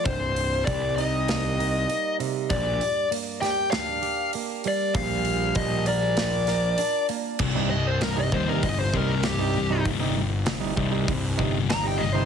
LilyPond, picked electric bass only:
\new Staff \with { instrumentName = "Picked electric bass" } { \clef bass \time 4/4 \key c \minor \tempo 4 = 98 c,,4 c,2 r4 | bes,,8 r2. r8 | bes,,4 bes,,2 r4 | c,4. ees,8 g,,8 c,4. |
g,,4. c,8 c,8 g,,4. | }